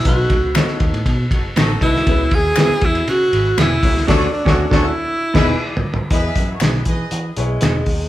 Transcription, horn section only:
X:1
M:4/4
L:1/16
Q:1/4=119
K:E
V:1 name="Horn section"
z8 z2 [DFA] z [DFA]3 z | z8 z2 [EGB] z [EGB]3 z | [FAc]2 z [FAc]2 [FAc]2 z3 [EGB]2 z4 | [EGB]3 [FAc] [EGB]2 [GBd]4 z6 |]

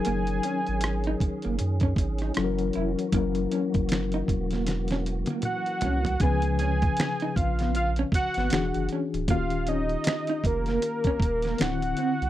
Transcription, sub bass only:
X:1
M:4/4
L:1/16
Q:"Swing 16ths" 1/4=78
K:F#
V:1 name="Sub bass" clef=bass
F,,,2 z G,,,3 F,,, F,,, F,,2 G,,,2 F,,,2 E,,, z | F,,,2 z F,,,3 =E,,,4- E,,, z3 ^B,,,2 | C,,4 z2 A,,,4 G,,, G,,, =E,,, F,,, z =D,,, | D,,,4 z2 E,,,2 z2 D,,,2 =D,,,2 z =C,, |]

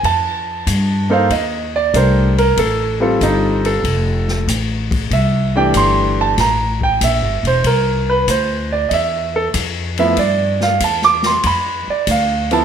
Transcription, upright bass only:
X:1
M:4/4
L:1/8
Q:"Swing" 1/4=95
K:Cmix
V:1 name="Upright bass" clef=bass
F,,2 G,,2 _E,,2 C,,2 | A,,,2 G,,,2 F,,,2 A,,,2 | C,,2 G,,,2 A,,,2 (3B,,, G,,, E,,, | C,,2 D,,2 E,,2 F,,2 |
G,,2 E,,2 F,, z D,,2 |]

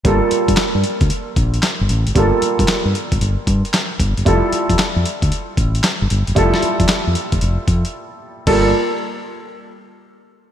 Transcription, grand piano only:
X:1
M:4/4
L:1/8
Q:"Swing 16ths" 1/4=114
K:Gdor
V:1 name="Grand piano"
[G,B,FA]8 | [G,B,FA]8 | [G,EFA]8 | [G,EFA]8 |
[G,B,FA] z6 z |]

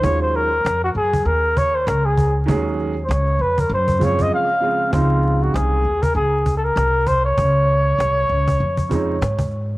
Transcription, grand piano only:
X:1
M:4/4
L:1/8
Q:"Swing 16ths" 1/4=98
K:Db
V:1 name="Grand piano" clef=bass
[E,G,A,DF] z6 z | [E,G,A,DA] z4 [D,F,A,CF] z [D,F,A,CF] | [D,F,A,CE]3 z4 z | z4 z [D,F,A,CE] z2 |]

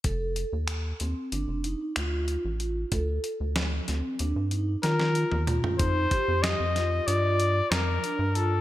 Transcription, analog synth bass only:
X:1
M:9/8
L:1/16
Q:3/8=63
K:Fmix
V:1 name="Analog synth bass" clef=bass
F,,,3 E,,3 E,, z G,,, F,,,2 z D,,3 A,,,3 | D,,2 z D,,3 D,, z E,, G,,3 E,3 E,,2 z | F,,2 z F,,2 F,,3 G,,4 F,,2 z G,,3 |]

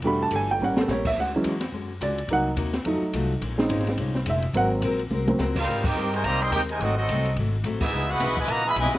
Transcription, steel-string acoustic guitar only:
X:1
M:4/4
L:1/8
Q:"Swing" 1/4=213
K:Abmix
V:1 name="Steel-string acoustic guitar"
[=E,=D=G=A] z [E,DGA] z [=A,^CGB] z [A,CGB] z | [=D,^G,^C^F] z [D,G,CF] z [D,G,CF] z [D,G,CF] z | [C,B,EG] z [C,B,EG] z [F,=A,EG] z [F,A,EG] z | [B,,A,DE] z [B,,A,DE] z [B,,A,DE] z [B,,A,DE] z |
[A,CGB] z [A,CGB] z [A,CGB] z [A,CGB] z | [K:Dblyd] [A,CGB] z [A,CGB] z [A,CGB] z [A,CGB] z | [A,,_G,=A,C] z [_A,,G,=A,C] z [_A,,G,=A,C] z [_A,,G,=A,C] z | [D,_F,_CE] z [D,F,CE] z [D,F,CE] z [D,F,CE] z |]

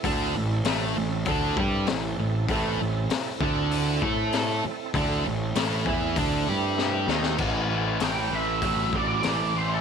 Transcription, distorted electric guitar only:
X:1
M:4/4
L:1/8
Q:1/4=98
K:Am
V:1 name="Distorted electric guitar" clef=bass
[D,D] A,, [A,,A,] A,, [D,D] [G,G] A,, A,, | [A,,A,] A,, z [D,D]2 [A,A]2 z | [D,D] A,, [A,,A,] [E,E] [D,D] [G,G]2 [^D,^D] | [A,,E,] [A,,E,] [A,,E,] [A,,E,] [A,,^F,] [A,,F,] [A,,E,] [A,,E,] |]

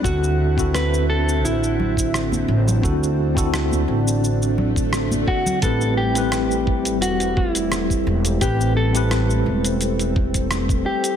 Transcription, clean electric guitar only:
X:1
M:4/4
L:1/8
Q:1/4=86
K:Ador
V:1 name="Clean electric guitar"
F2 B A E4- | E6 z F | A G3 F E3 | G A4 z2 G |]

